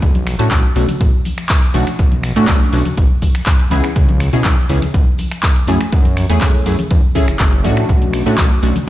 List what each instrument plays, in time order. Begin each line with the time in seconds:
0.02 analog synth bass B1, kick, closed hi-hat, tambourine, cabasa
0.15 closed hi-hat, high conga
0.27 finger snap, open hi-hat, tambourine, cabasa
0.39 analog synth bass A2, analog polysynth A3 C#4 D4 F#4, closed hi-hat, tambourine, cabasa
0.51 analog synth bass B1, analog polysynth A3 F#4, kick, clap, closed hi-hat, tambourine, high conga, cabasa
0.76 analog synth bass B1, analog polysynth A3 C#4 D4 F#4, open hi-hat, tambourine, cabasa
0.88 closed hi-hat, tambourine, high conga, low conga, cabasa
1.01 analog synth bass A1, kick, closed hi-hat, tambourine, cabasa
1.25 open hi-hat, tambourine, high conga, cabasa
1.38 finger snap, closed hi-hat, tambourine, cabasa
1.49 kick, clap, closed hi-hat, cabasa
1.62 closed hi-hat
1.74 analog synth bass B1, analog polysynth A3 C#4 D4 F#4, open hi-hat, tambourine, high conga, cabasa
1.87 finger snap, closed hi-hat, tambourine, cabasa
1.99 analog synth bass B1, kick, closed hi-hat, cabasa
2.12 closed hi-hat, high conga
2.23 finger snap, open hi-hat, tambourine, cabasa
2.36 analog synth bass A2, analog polysynth A3 C#4 D4 F#4, closed hi-hat, tambourine, cabasa
2.47 analog synth bass B1, analog polysynth A3 C#4 D4, kick, clap, closed hi-hat, tambourine, high conga, cabasa
2.73 analog synth bass B1, analog polysynth A3 C#4 D4 F#4, open hi-hat, tambourine, cabasa
2.85 closed hi-hat, tambourine, high conga, low conga, cabasa
2.97 analog synth bass A1, kick, closed hi-hat, tambourine, cabasa
3.22 kick, open hi-hat, tambourine, high conga, cabasa
3.35 finger snap, closed hi-hat, tambourine, cabasa
3.46 kick, clap, closed hi-hat, tambourine, cabasa
3.59 closed hi-hat
3.70 analog synth bass C#2, analog polysynth B3 C#4 E4 G#4, open hi-hat, tambourine, high conga, cabasa
3.84 finger snap, closed hi-hat, tambourine, cabasa
3.96 analog synth bass C#2, kick, closed hi-hat, cabasa
4.09 closed hi-hat, high conga
4.20 finger snap, open hi-hat, tambourine, cabasa
4.32 analog synth bass B2, analog polysynth B3 C#4 E4 G#4, closed hi-hat, tambourine, cabasa
4.44 analog synth bass C#2, analog polysynth B3 C#4 E4, kick, clap, closed hi-hat, tambourine, high conga, cabasa
4.69 analog synth bass C#2, analog polysynth B3 C#4 E4 G#4, open hi-hat, tambourine, cabasa
4.82 closed hi-hat, tambourine, high conga, low conga, cabasa
4.94 analog synth bass B1, kick, closed hi-hat, tambourine, cabasa
5.18 open hi-hat, tambourine, high conga, cabasa
5.31 finger snap, closed hi-hat, tambourine, cabasa
5.43 kick, clap, closed hi-hat, cabasa
5.56 closed hi-hat
5.67 analog synth bass F#2, analog polysynth A3 C#4 E4 G#4, open hi-hat, tambourine, high conga, cabasa
5.80 finger snap, closed hi-hat, tambourine, cabasa
5.92 analog synth bass F#2, kick, closed hi-hat, tambourine, cabasa
6.05 closed hi-hat, high conga
6.17 finger snap, open hi-hat, tambourine, cabasa
6.29 analog synth bass E2, analog polysynth A3 C#4 E4 G#4, closed hi-hat, tambourine, cabasa
6.41 analog synth bass F#2, analog polysynth A3 C#4 E4 G#4, kick, clap, closed hi-hat, tambourine, high conga, cabasa
6.54 closed hi-hat
6.66 analog synth bass F#2, analog polysynth A3 C#4 E4 G#4, open hi-hat, tambourine, cabasa
6.79 closed hi-hat, tambourine, high conga, low conga, cabasa
6.91 analog synth bass E2, kick, closed hi-hat, tambourine, cabasa
7.15 analog polysynth A3 C#4 E4 G#4, kick, open hi-hat, tambourine, high conga, cabasa
7.28 analog synth bass F#1, finger snap, closed hi-hat, tambourine, cabasa
7.39 analog synth bass F#1, analog polysynth A3 C#4 E4 G#4, kick, clap, closed hi-hat, tambourine, cabasa
7.52 closed hi-hat
7.64 analog synth bass A2, analog polysynth A3 C#4 D4 F#4, open hi-hat, tambourine, high conga, cabasa
7.77 finger snap, closed hi-hat, tambourine, cabasa
7.89 analog synth bass B1, kick, closed hi-hat, tambourine, cabasa
8.02 closed hi-hat, high conga
8.13 finger snap, open hi-hat, tambourine, cabasa
8.26 analog synth bass A2, analog polysynth A3 C#4 D4 F#4, closed hi-hat, tambourine, cabasa
8.38 analog synth bass B1, analog polysynth A3 C#4 D4 F#4, kick, clap, closed hi-hat, tambourine, high conga, cabasa
8.62 analog synth bass B1, analog polysynth A3 C#4 D4 F#4, open hi-hat, tambourine, cabasa
8.75 closed hi-hat, tambourine, high conga, low conga, cabasa